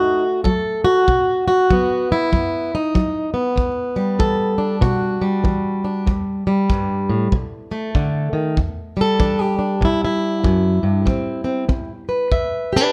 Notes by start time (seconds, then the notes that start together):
Already playing: F#2 A3 D#4 F#4
0.44 F#3 A4, kick
0.84 F#4
1.08 B2, kick
1.48 F#4
1.71 F#3 B3, kick
2.12 E4
2.32 F#2 B3, kick
2.75 D#4
2.95 F#3, kick
3.34 B3
3.56 E2, kick
3.96 G3
4.19 E3 A4, kick
4.58 D4
4.81 B2 F#4, kick
5.22 G3
5.44 E3, kick
5.84 D4
6.07 E2, kick
6.47 G3
6.70 G2, kick
7.09 A2
7.32 B2, kick
7.71 A3
7.95 D3, kick
8.33 D#3
8.57 E2, kick
8.97 G3
9.01 A4
9.19 E3 D4, kick
9.41 G4
9.59 D4
9.81 B2 E4, kick
10.05 E4
10.44 F#2, kick
10.83 G2
11.05 A2 C4, kick
11.44 C4
11.69 C4, kick
12.09 B4
12.32 E2 E5, kick
12.73 D4 G4 B4